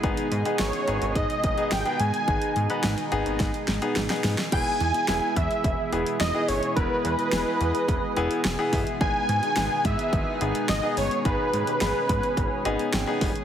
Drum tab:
CC |----------------|----------------|x---------------|----------------|
HH |xxxxxxxxxxxxxxxx|xxxxxxxxxxxxxxox|x-xxx-xxx-xxx-ox|x-xxx-xxx-xxx-ox|
SD |----o-------o---|----o---o-o-oooo|----o-------o---|----o-------o---|
BD |o-------o-o-----|o-------o-------|o-----o-o-------|o-------o-----o-|

CC |----------------|----------------|
HH |x-xxx-xxx-xxx-ox|x-xxx-xxx-xxx-ox|
SD |----o-------o---|----o-------o---|
BD |o-----o-o-------|o-----o-o-----o-|